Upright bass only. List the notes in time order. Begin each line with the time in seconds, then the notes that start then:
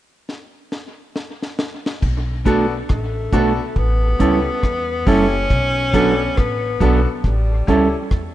2.03 B1
2.90 A1
3.33 B1
3.76 A1
4.21 C#2
4.64 E2
5.07 F#1
5.51 B1
6.38 A1
6.81 B1
7.24 A1
7.69 C#2
8.11 E2